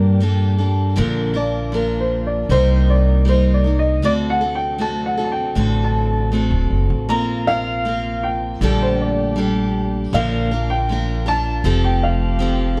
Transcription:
0.00 0.21 G2 medium
0.00 0.99 G2 medium
0.00 0.97 A#2 medium
0.00 0.22 D3 medium
0.00 0.19 G3 medium
0.00 0.20 A#3 medium
0.00 0.21 D4 medium
0.00 0.97 G4 medium
0.00 0.18 A#4 medium
0.20 0.59 G3 medium
0.20 0.60 A#3 medium
0.20 0.58 D4 medium
0.20 0.57 A4 medium
0.58 0.97 G3 soft
0.58 0.97 A#3 soft
0.58 0.97 D4 soft
0.58 0.97 A4 soft
0.96 2.46 A#1 medium
0.96 1.35 A#2 medium
0.96 1.35 D3 medium
0.96 2.50 D3 medium
0.96 1.36 F3 medium
0.96 1.35 A#3 medium
0.96 4.00 A#3 medium
0.96 1.34 D4 medium
0.96 2.49 F4 medium
0.96 1.33 A#4 medium
1.34 1.71 F3 soft
1.34 1.73 A#3 soft
1.34 1.73 D4 medium
1.34 1.73 A#4 medium
1.34 1.76 D5 medium
1.72 2.49 F3 medium
1.72 2.50 A#3 medium
1.72 2.51 D4 medium
1.72 2.01 A#4 medium
1.72 2.50 A#4 medium
2.00 2.26 C5 medium
2.27 2.52 D5 medium
2.49 4.03 C2 loud
2.49 3.26 C3 medium
2.49 8.57 C3 medium
2.49 3.24 G3 medium
2.49 3.25 A#3 medium
2.49 3.26 D#4 medium
2.49 4.02 D#4 medium
2.49 3.27 A#4 medium
2.49 2.90 C5 loud
2.90 3.29 D5 medium
3.25 3.64 G3 medium
3.25 3.65 A#3 medium
3.25 3.65 D#4 medium
3.25 3.63 A#4 medium
3.29 3.54 C5 medium
3.54 3.79 D5 medium
3.64 4.03 A#3 soft
3.64 4.04 D#4 soft
3.64 4.03 A#4 soft
3.79 4.05 D#5 medium
4.02 5.51 D2 medium
4.02 4.41 D3 medium
4.02 7.06 F#3 medium
4.02 4.41 A3 medium
4.02 4.41 C4 medium
4.02 7.06 D4 medium
4.02 4.41 F#4 medium
4.02 4.39 A4 medium
4.02 4.11 D5 loud
4.30 4.55 F#5 medium
4.41 4.78 C4 soft
4.41 4.79 F#4 soft
4.41 4.79 A4 soft
4.55 4.81 G5 medium
4.78 5.17 A3 medium
4.78 5.17 C4 medium
4.78 5.18 F#4 medium
4.78 5.16 A4 medium
4.78 5.06 A5 medium
5.06 5.24 F#5 medium
5.17 5.55 C4 soft
5.17 5.56 F#4 medium
5.17 5.56 A4 soft
5.24 5.31 A5 medium
5.32 5.83 G5 medium
5.55 6.50 A1 medium
5.55 6.32 D3 medium
5.55 6.30 A3 medium
5.55 6.32 C4 medium
5.55 6.33 F#4 medium
5.55 6.33 A4 medium
5.84 6.55 A5 medium
6.32 7.08 A3 medium
6.32 7.08 C4 medium
6.32 7.09 F#4 medium
6.32 7.10 A4 medium
6.51 6.68 D1 medium
6.70 6.87 F#1 medium
6.90 7.09 A1 medium
7.09 8.57 A#1 medium
7.09 7.46 A#3 medium
7.09 8.59 A#3 medium
7.09 7.47 C4 medium
7.09 8.59 F4 medium
7.09 7.47 F4 medium
7.09 7.46 A#4 medium
7.09 7.48 A#5 loud
7.47 7.85 C4 soft
7.47 7.86 F4 soft
7.47 7.85 A#4 medium
7.47 8.25 F5 loud
7.85 8.61 A#3 soft
7.85 8.61 C4 soft
7.85 8.62 F4 medium
7.85 8.62 A#4 medium
8.23 8.82 G5 medium
8.60 10.09 A#1 loud
8.60 10.11 A#2 medium
8.60 9.37 A#2 medium
8.60 9.37 D3 medium
8.60 9.35 G3 medium
8.60 10.11 A3 medium
8.60 9.36 D4 medium
8.60 10.11 G4 medium
8.60 9.37 G4 medium
8.60 9.38 A4 medium
8.82 8.99 C5 medium
9.02 9.35 D5 medium
9.36 10.12 G3 medium
9.36 10.13 D4 medium
9.36 10.14 G4 medium
9.36 10.14 A4 medium
10.11 11.61 A#1 medium
10.11 10.51 A#2 medium
10.11 11.63 D3 medium
10.11 10.51 D3 medium
10.11 10.51 F3 medium
10.11 11.63 A#3 medium
10.11 10.52 A#3 medium
10.11 10.52 D4 medium
10.11 11.63 F4 medium
10.11 10.50 A#4 medium
10.11 10.72 F5 loud
10.51 10.88 F3 soft
10.51 10.89 A#3 soft
10.51 10.90 D4 medium
10.51 10.89 A#4 medium
10.70 11.23 G5 medium
10.89 11.27 F3 soft
10.89 11.27 A#3 medium
10.89 11.26 D4 medium
10.89 11.25 A#4 medium
11.26 11.63 F3 soft
11.26 11.64 A#3 soft
11.26 11.65 D4 soft
11.26 11.64 A#4 medium
11.26 11.81 A5 loud
11.64 12.80 F1 medium
11.64 12.38 F3 medium
11.64 12.80 F3 medium
11.64 12.80 A3 medium
11.64 12.39 C4 medium
11.64 12.40 G4 medium
11.64 12.80 G4 medium
11.64 12.41 A4 medium
11.84 12.04 G5 medium
12.03 12.80 F5 medium
12.39 12.78 F3 medium
12.39 12.79 C4 medium
12.39 12.78 G4 medium
12.39 12.76 A4 medium

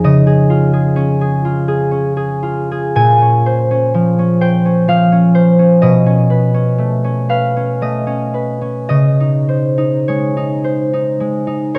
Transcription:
0.00 3.05 F3 soft
0.00 3.00 D#4 soft
0.00 0.25 G#4 soft
0.00 0.76 F5 medium
0.04 3.00 C#3 medium
0.04 3.00 D#5 medium
0.27 0.72 G#4 soft
0.50 1.44 F4 soft
0.73 1.20 G#4 soft
0.96 1.90 C#4 medium
1.21 1.67 G#4 medium
1.45 2.42 F4 soft
1.68 2.16 G#4 medium
1.91 3.21 C#4 soft
2.17 2.70 G#4 soft
2.43 5.88 F4 soft
2.72 5.89 G#4 soft
2.96 5.88 A#2 medium
2.96 5.88 G#5 medium
3.22 3.70 C#4 soft
3.46 4.40 C5 medium
3.71 4.18 C#4 soft
3.94 4.87 F3 soft
4.19 4.64 C#4 soft
4.41 5.34 C5 soft
4.41 5.21 G5 medium
4.65 5.11 C#4 soft
4.88 5.87 F3 soft
4.88 5.88 F5 medium
5.12 5.58 C#4 soft
5.35 5.87 C5 medium
5.59 6.05 C#4 soft
5.82 8.94 B2 medium
5.82 7.81 D#5 medium
6.06 6.53 C#4 soft
6.30 7.28 B4 soft
6.54 7.03 C#4 soft
6.78 7.80 A3 soft
7.04 7.55 C#4 soft
7.29 8.33 B4 soft
7.29 8.18 F5 medium
7.56 8.06 C#4 soft
7.81 8.95 A3 soft
7.81 8.88 D#5 medium
8.07 8.60 C#4 soft
8.34 8.95 B4 soft
8.61 11.79 C#4 soft
8.89 11.79 C#3 medium
8.89 11.79 D#5 medium
9.20 9.77 D#4 soft
9.49 10.63 C5 soft
9.78 10.36 D#4 soft
10.08 11.19 G#3 soft
10.08 11.73 C#5 medium
10.37 10.92 D#4 soft
10.64 11.73 C5 soft
10.93 11.46 D#4 soft
11.20 11.79 G#3 soft
11.47 11.79 D#4 soft
11.74 11.79 A#4 medium
11.74 11.79 C5 soft
11.74 11.79 C#5 medium

